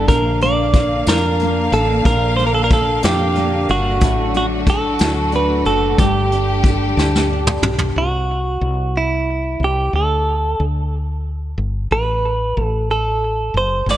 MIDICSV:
0, 0, Header, 1, 6, 480
1, 0, Start_track
1, 0, Tempo, 656455
1, 60, Time_signature, 6, 3, 24, 8
1, 10215, End_track
2, 0, Start_track
2, 0, Title_t, "Clean electric guitar"
2, 0, Program_c, 0, 27
2, 62, Note_on_c, 0, 70, 88
2, 308, Note_off_c, 0, 70, 0
2, 311, Note_on_c, 0, 74, 89
2, 790, Note_off_c, 0, 74, 0
2, 793, Note_on_c, 0, 70, 84
2, 1266, Note_off_c, 0, 70, 0
2, 1269, Note_on_c, 0, 69, 86
2, 1504, Note_off_c, 0, 69, 0
2, 1507, Note_on_c, 0, 70, 93
2, 1722, Note_off_c, 0, 70, 0
2, 1730, Note_on_c, 0, 72, 74
2, 1787, Note_off_c, 0, 72, 0
2, 1803, Note_on_c, 0, 70, 79
2, 1857, Note_off_c, 0, 70, 0
2, 1861, Note_on_c, 0, 69, 78
2, 1919, Note_off_c, 0, 69, 0
2, 1931, Note_on_c, 0, 70, 82
2, 1988, Note_off_c, 0, 70, 0
2, 1998, Note_on_c, 0, 69, 84
2, 2223, Note_off_c, 0, 69, 0
2, 2226, Note_on_c, 0, 67, 81
2, 2708, Note_off_c, 0, 67, 0
2, 2711, Note_on_c, 0, 66, 89
2, 3187, Note_off_c, 0, 66, 0
2, 3196, Note_on_c, 0, 66, 82
2, 3258, Note_off_c, 0, 66, 0
2, 3435, Note_on_c, 0, 69, 84
2, 3914, Note_off_c, 0, 69, 0
2, 3917, Note_on_c, 0, 71, 81
2, 4139, Note_off_c, 0, 71, 0
2, 4141, Note_on_c, 0, 69, 84
2, 4381, Note_off_c, 0, 69, 0
2, 4384, Note_on_c, 0, 67, 74
2, 4891, Note_off_c, 0, 67, 0
2, 5835, Note_on_c, 0, 66, 61
2, 6561, Note_on_c, 0, 64, 69
2, 6568, Note_off_c, 0, 66, 0
2, 7045, Note_off_c, 0, 64, 0
2, 7051, Note_on_c, 0, 67, 78
2, 7277, Note_off_c, 0, 67, 0
2, 7280, Note_on_c, 0, 69, 71
2, 7781, Note_off_c, 0, 69, 0
2, 8719, Note_on_c, 0, 71, 72
2, 9238, Note_off_c, 0, 71, 0
2, 9238, Note_on_c, 0, 69, 72
2, 9438, Note_off_c, 0, 69, 0
2, 9441, Note_on_c, 0, 69, 71
2, 9923, Note_off_c, 0, 69, 0
2, 9926, Note_on_c, 0, 72, 82
2, 10139, Note_off_c, 0, 72, 0
2, 10169, Note_on_c, 0, 74, 80
2, 10215, Note_off_c, 0, 74, 0
2, 10215, End_track
3, 0, Start_track
3, 0, Title_t, "Steel-string acoustic guitar"
3, 0, Program_c, 1, 25
3, 0, Note_on_c, 1, 59, 58
3, 0, Note_on_c, 1, 62, 61
3, 111, Note_off_c, 1, 59, 0
3, 312, Note_on_c, 1, 58, 56
3, 789, Note_off_c, 1, 62, 0
3, 792, Note_on_c, 1, 62, 60
3, 1025, Note_off_c, 1, 58, 0
3, 1037, Note_on_c, 1, 58, 57
3, 1264, Note_off_c, 1, 62, 0
3, 1267, Note_on_c, 1, 62, 61
3, 1503, Note_on_c, 1, 46, 83
3, 1735, Note_off_c, 1, 58, 0
3, 1744, Note_on_c, 1, 58, 57
3, 2210, Note_off_c, 1, 62, 0
3, 2213, Note_on_c, 1, 62, 63
3, 2453, Note_off_c, 1, 58, 0
3, 2462, Note_on_c, 1, 58, 59
3, 2698, Note_off_c, 1, 62, 0
3, 2701, Note_on_c, 1, 62, 59
3, 2939, Note_off_c, 1, 46, 0
3, 2942, Note_on_c, 1, 45, 76
3, 2988, Note_off_c, 1, 58, 0
3, 3176, Note_off_c, 1, 62, 0
3, 3176, Note_on_c, 1, 62, 59
3, 3417, Note_on_c, 1, 69, 73
3, 3653, Note_on_c, 1, 66, 62
3, 3891, Note_off_c, 1, 62, 0
3, 3894, Note_on_c, 1, 62, 61
3, 4135, Note_off_c, 1, 66, 0
3, 4143, Note_on_c, 1, 66, 56
3, 4379, Note_off_c, 1, 45, 0
3, 4385, Note_on_c, 1, 43, 84
3, 4424, Note_off_c, 1, 62, 0
3, 4425, Note_off_c, 1, 69, 0
3, 4428, Note_off_c, 1, 66, 0
3, 4627, Note_on_c, 1, 62, 56
3, 4867, Note_on_c, 1, 69, 64
3, 5101, Note_on_c, 1, 67, 62
3, 5330, Note_off_c, 1, 62, 0
3, 5339, Note_on_c, 1, 62, 53
3, 5579, Note_off_c, 1, 67, 0
3, 5582, Note_on_c, 1, 67, 60
3, 5821, Note_off_c, 1, 43, 0
3, 5866, Note_off_c, 1, 62, 0
3, 5868, Note_off_c, 1, 67, 0
3, 5871, Note_off_c, 1, 69, 0
3, 10215, End_track
4, 0, Start_track
4, 0, Title_t, "String section"
4, 0, Program_c, 2, 48
4, 45, Note_on_c, 2, 58, 69
4, 46, Note_on_c, 2, 77, 86
4, 50, Note_on_c, 2, 50, 69
4, 2901, Note_off_c, 2, 58, 0
4, 2901, Note_off_c, 2, 77, 0
4, 2935, Note_on_c, 2, 57, 70
4, 2939, Note_on_c, 2, 54, 68
4, 2940, Note_on_c, 2, 66, 84
4, 4363, Note_off_c, 2, 54, 0
4, 4364, Note_off_c, 2, 66, 0
4, 4369, Note_on_c, 2, 55, 69
4, 4379, Note_on_c, 2, 67, 90
4, 5783, Note_off_c, 2, 50, 0
4, 5788, Note_off_c, 2, 57, 0
4, 5799, Note_off_c, 2, 55, 0
4, 5804, Note_off_c, 2, 67, 0
4, 10215, End_track
5, 0, Start_track
5, 0, Title_t, "Fretless electric bass"
5, 0, Program_c, 3, 35
5, 61, Note_on_c, 3, 34, 94
5, 751, Note_off_c, 3, 34, 0
5, 783, Note_on_c, 3, 41, 81
5, 1232, Note_off_c, 3, 41, 0
5, 1259, Note_on_c, 3, 33, 94
5, 1484, Note_off_c, 3, 33, 0
5, 1499, Note_on_c, 3, 34, 100
5, 2189, Note_off_c, 3, 34, 0
5, 2222, Note_on_c, 3, 41, 91
5, 2671, Note_off_c, 3, 41, 0
5, 2700, Note_on_c, 3, 31, 86
5, 2937, Note_off_c, 3, 31, 0
5, 2937, Note_on_c, 3, 33, 101
5, 3628, Note_off_c, 3, 33, 0
5, 3661, Note_on_c, 3, 38, 94
5, 4110, Note_off_c, 3, 38, 0
5, 4134, Note_on_c, 3, 30, 89
5, 4361, Note_off_c, 3, 30, 0
5, 4377, Note_on_c, 3, 31, 103
5, 5068, Note_off_c, 3, 31, 0
5, 5097, Note_on_c, 3, 38, 92
5, 5549, Note_off_c, 3, 38, 0
5, 5574, Note_on_c, 3, 35, 84
5, 5801, Note_off_c, 3, 35, 0
5, 5821, Note_on_c, 3, 36, 75
5, 6271, Note_off_c, 3, 36, 0
5, 6299, Note_on_c, 3, 36, 82
5, 6990, Note_off_c, 3, 36, 0
5, 7018, Note_on_c, 3, 36, 69
5, 7244, Note_off_c, 3, 36, 0
5, 7262, Note_on_c, 3, 38, 83
5, 7713, Note_off_c, 3, 38, 0
5, 7749, Note_on_c, 3, 38, 80
5, 8437, Note_off_c, 3, 38, 0
5, 8465, Note_on_c, 3, 31, 80
5, 8689, Note_off_c, 3, 31, 0
5, 8709, Note_on_c, 3, 33, 81
5, 9157, Note_off_c, 3, 33, 0
5, 9191, Note_on_c, 3, 33, 88
5, 9879, Note_off_c, 3, 33, 0
5, 9900, Note_on_c, 3, 30, 74
5, 10128, Note_off_c, 3, 30, 0
5, 10136, Note_on_c, 3, 31, 80
5, 10215, Note_off_c, 3, 31, 0
5, 10215, End_track
6, 0, Start_track
6, 0, Title_t, "Drums"
6, 60, Note_on_c, 9, 42, 80
6, 61, Note_on_c, 9, 36, 92
6, 133, Note_off_c, 9, 42, 0
6, 134, Note_off_c, 9, 36, 0
6, 301, Note_on_c, 9, 42, 48
6, 375, Note_off_c, 9, 42, 0
6, 539, Note_on_c, 9, 36, 89
6, 539, Note_on_c, 9, 42, 59
6, 612, Note_off_c, 9, 36, 0
6, 612, Note_off_c, 9, 42, 0
6, 778, Note_on_c, 9, 42, 93
6, 794, Note_on_c, 9, 38, 111
6, 851, Note_off_c, 9, 42, 0
6, 867, Note_off_c, 9, 38, 0
6, 1019, Note_on_c, 9, 42, 52
6, 1092, Note_off_c, 9, 42, 0
6, 1260, Note_on_c, 9, 42, 49
6, 1333, Note_off_c, 9, 42, 0
6, 1500, Note_on_c, 9, 42, 76
6, 1501, Note_on_c, 9, 36, 95
6, 1573, Note_off_c, 9, 42, 0
6, 1574, Note_off_c, 9, 36, 0
6, 1747, Note_on_c, 9, 42, 49
6, 1820, Note_off_c, 9, 42, 0
6, 1979, Note_on_c, 9, 36, 91
6, 1982, Note_on_c, 9, 42, 55
6, 2052, Note_off_c, 9, 36, 0
6, 2055, Note_off_c, 9, 42, 0
6, 2213, Note_on_c, 9, 42, 91
6, 2229, Note_on_c, 9, 38, 110
6, 2286, Note_off_c, 9, 42, 0
6, 2302, Note_off_c, 9, 38, 0
6, 2452, Note_on_c, 9, 42, 53
6, 2525, Note_off_c, 9, 42, 0
6, 2695, Note_on_c, 9, 42, 49
6, 2768, Note_off_c, 9, 42, 0
6, 2930, Note_on_c, 9, 42, 86
6, 2936, Note_on_c, 9, 36, 89
6, 3003, Note_off_c, 9, 42, 0
6, 3010, Note_off_c, 9, 36, 0
6, 3175, Note_on_c, 9, 42, 50
6, 3248, Note_off_c, 9, 42, 0
6, 3409, Note_on_c, 9, 42, 59
6, 3413, Note_on_c, 9, 36, 91
6, 3483, Note_off_c, 9, 42, 0
6, 3486, Note_off_c, 9, 36, 0
6, 3646, Note_on_c, 9, 42, 91
6, 3662, Note_on_c, 9, 38, 106
6, 3719, Note_off_c, 9, 42, 0
6, 3735, Note_off_c, 9, 38, 0
6, 3888, Note_on_c, 9, 42, 51
6, 3961, Note_off_c, 9, 42, 0
6, 4132, Note_on_c, 9, 42, 45
6, 4206, Note_off_c, 9, 42, 0
6, 4376, Note_on_c, 9, 36, 94
6, 4376, Note_on_c, 9, 42, 78
6, 4449, Note_off_c, 9, 36, 0
6, 4449, Note_off_c, 9, 42, 0
6, 4620, Note_on_c, 9, 42, 49
6, 4693, Note_off_c, 9, 42, 0
6, 4853, Note_on_c, 9, 42, 57
6, 4854, Note_on_c, 9, 36, 87
6, 4927, Note_off_c, 9, 36, 0
6, 4927, Note_off_c, 9, 42, 0
6, 5109, Note_on_c, 9, 38, 53
6, 5182, Note_off_c, 9, 38, 0
6, 5232, Note_on_c, 9, 38, 54
6, 5305, Note_off_c, 9, 38, 0
6, 5462, Note_on_c, 9, 47, 74
6, 5535, Note_off_c, 9, 47, 0
6, 5578, Note_on_c, 9, 45, 97
6, 5651, Note_off_c, 9, 45, 0
6, 5692, Note_on_c, 9, 43, 83
6, 5766, Note_off_c, 9, 43, 0
6, 10155, Note_on_c, 9, 38, 43
6, 10215, Note_off_c, 9, 38, 0
6, 10215, End_track
0, 0, End_of_file